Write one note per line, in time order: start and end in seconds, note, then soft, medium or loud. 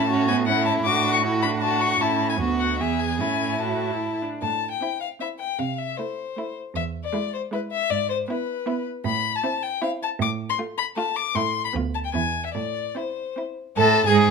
0.00 0.83 A2 medium
0.00 0.28 A5 medium
0.08 0.29 C#4 medium
0.08 0.46 F#4 medium
0.28 0.49 B3 medium
0.28 0.36 G#5 medium
0.46 0.85 C#4 medium
0.46 0.88 E4 medium
0.46 0.65 F#5 medium
0.65 0.73 A5 medium
0.85 1.99 A2 medium
0.85 1.25 D4 medium
0.85 1.24 F#4 medium
0.85 1.13 D6 medium
1.13 1.21 C#6 medium
1.24 1.45 E4 medium
1.24 1.62 F#4 soft
1.42 2.02 D4 medium
1.42 1.50 B5 medium
1.61 2.03 F#4 medium
1.61 1.83 A5 medium
1.81 2.02 C#6 medium
2.00 2.41 A2 medium
2.00 2.38 C#4 soft
2.00 2.40 E4 soft
2.00 2.29 A5 medium
2.29 2.37 G#5 medium
2.39 2.81 D2 soft
2.39 2.78 B3 soft
2.39 2.82 F#4 soft
2.58 2.78 F#5 medium
2.79 3.22 E2 soft
2.79 3.22 B3 soft
2.79 3.22 G#4 soft
2.79 3.01 E5 medium
2.99 3.19 G#5 medium
3.20 4.22 A2 soft
3.20 3.57 C#4 soft
3.20 4.23 E4 soft
3.20 3.61 G#5 medium
3.60 3.93 F#4 medium
3.60 4.22 A5 soft
3.91 4.23 E4 soft
4.22 4.42 D4 soft
4.42 4.73 A2 soft
4.42 4.70 A5 medium
4.71 5.00 G5 medium
4.81 5.10 C4 soft
4.81 5.11 E4 soft
5.01 5.09 F5 medium
5.20 5.49 C4 soft
5.20 5.50 E4 soft
5.20 5.28 E5 medium
5.40 5.60 G5 medium
5.59 5.90 C3 soft
5.59 5.80 F5 soft
5.78 5.99 E5 medium
5.97 6.27 A3 soft
5.97 6.27 E4 soft
5.97 6.55 C5 soft
6.37 6.65 A3 soft
6.37 6.66 E4 medium
6.74 7.05 E2 medium
6.74 6.84 E5 medium
7.04 7.32 D5 medium
7.13 7.42 G#3 medium
7.13 7.42 E4 soft
7.34 7.41 C5 soft
7.51 7.80 G#3 soft
7.51 7.81 E4 medium
7.51 7.61 B4 medium
7.72 7.92 E5 medium
7.90 8.20 G#2 medium
7.90 8.09 D5 medium
8.10 8.17 C5 medium
8.28 8.57 B3 medium
8.28 8.58 E4 medium
8.28 8.84 B4 medium
8.66 8.95 B3 medium
8.66 8.95 E4 medium
9.05 9.35 A2 medium
9.05 9.37 B5 medium
9.35 9.64 A5 medium
9.43 9.72 C4 medium
9.43 9.72 E4 soft
9.63 9.82 G5 medium
9.82 10.10 C4 medium
9.82 10.10 E4 medium
9.82 9.90 F5 medium
10.03 10.10 A5 medium
10.19 10.50 A2 medium
10.19 10.30 D6 medium
10.50 10.58 C6 medium
10.58 10.87 A3 medium
10.58 10.87 F4 soft
10.78 10.85 B5 medium
10.97 11.26 A3 medium
10.97 11.26 F4 medium
10.97 11.18 A5 medium
11.16 11.37 D6 medium
11.35 11.66 A2 medium
11.35 11.65 A3 medium
11.35 11.65 E4 medium
11.35 11.64 C6 medium
11.65 11.73 B5 medium
11.73 12.06 D2 medium
11.73 12.03 B3 medium
11.73 12.05 F4 soft
11.95 11.98 A5 medium
12.05 12.14 G5 soft
12.13 12.46 E2 medium
12.13 12.44 B3 soft
12.13 12.45 E4 soft
12.13 12.44 G#5 medium
12.45 12.53 E5 soft
12.54 12.88 A2 soft
12.54 12.98 D5 medium
12.95 13.26 C4 soft
12.95 13.26 E4 soft
12.95 13.37 C5 soft
13.36 13.66 C4 soft
13.36 13.67 E4 soft
13.76 14.04 A2 medium
13.76 13.84 A4 medium
13.76 14.05 A4 medium
13.76 14.04 A5 medium
14.06 14.30 G#2 medium
14.06 14.30 G#4 medium
14.06 14.15 G#5 medium